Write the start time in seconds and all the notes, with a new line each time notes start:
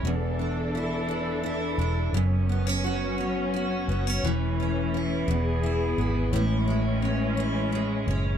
Already playing: G#3 C#4 E4
0.03 E1 E2 E3 D4 A4
0.39 D4
0.75 E4
1.08 D4
1.43 E4
1.78 E1 D4
2.13 F#1 F#2 F#3 B3 C#4
2.49 B3
2.67 C#4
2.84 F#4
3.18 C#4
3.54 F#4
3.88 F#1 B3
4.07 C#4
4.23 E1 E3 A3
4.60 C#4
4.94 E4
5.28 E1 E2 B3 G#4
5.63 E4
5.98 G#1 B3
6.33 A1 A2 E3 G#3 C#4 E4
6.68 G#3
7.02 C#4
7.37 E4
7.72 G#3
8.07 F#1 C#4